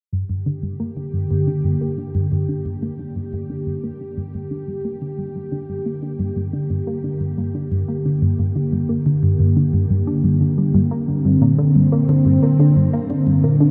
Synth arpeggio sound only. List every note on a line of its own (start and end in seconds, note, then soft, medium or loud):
0.13 0.24 G2 medium
0.29 0.46 G2 medium
0.46 0.62 D3 medium
0.63 0.75 G2 medium
0.80 0.91 A#3 medium
0.97 1.13 D3 medium
1.14 1.25 G2 medium
1.31 1.47 G2 medium
1.48 1.64 D3 medium
1.64 1.76 G2 medium
1.81 1.93 A#3 medium
1.98 2.14 D3 medium
2.15 2.26 G2 medium
2.32 2.48 G2 medium
2.49 2.65 D3 medium
2.66 2.77 G2 medium
2.83 2.94 A#3 medium
2.99 3.15 D3 medium
3.16 3.27 G2 medium
3.33 3.49 G2 medium
3.50 3.66 D3 medium
3.67 3.78 G2 medium
3.84 3.95 A#3 medium
4.01 4.16 D3 medium
4.18 4.29 G2 medium
4.34 4.50 G2 medium
4.51 4.67 D3 medium
4.68 4.79 G2 medium
4.85 4.96 A#3 medium
5.02 5.18 D3 medium
5.18 5.30 G2 medium
5.35 5.51 G2 medium
5.52 5.68 D3 medium
5.69 5.80 G2 medium
5.86 5.97 A#3 medium
6.03 6.19 D3 medium
6.19 6.31 G2 medium
6.36 6.52 G2 medium
6.53 6.69 D3 medium
6.70 6.82 G2 medium
6.87 6.98 A#3 medium
7.04 7.20 D3 medium
7.21 7.32 G2 medium
7.38 7.54 G2 medium
7.55 7.71 D3 medium
7.72 7.83 G2 medium
7.88 8.00 A#3 medium
8.06 8.21 D3 medium
8.22 8.33 G2 medium
8.39 8.55 G2 medium
8.56 8.72 D3 medium
8.72 8.84 G2 medium
8.89 9.01 A#3 medium
9.06 9.22 D3 medium
9.23 9.34 G2 medium
9.40 9.56 G2 medium
9.56 9.73 D3 medium
9.74 9.85 G2 medium
9.90 10.02 G2 medium
10.07 10.19 D4 medium
10.24 10.40 G2 medium
10.41 10.52 D3 medium
10.58 10.74 G3 medium
10.74 10.81 G2 medium
10.91 11.03 A#3 medium
11.08 11.24 D3 medium
11.25 11.36 G2 medium
11.42 11.53 A#2 loud
11.59 11.75 D3 medium
11.75 11.87 G2 medium
11.92 12.04 A#3 medium
12.09 12.25 D3 medium
12.26 12.37 G2 medium
12.43 12.54 A#2 medium
12.60 12.76 D3 medium
12.77 12.88 G2 medium
12.93 13.05 A#3 medium
13.10 13.26 D3 medium
13.27 13.38 G2 medium
13.44 13.55 A#2 medium
13.60 13.71 D3 medium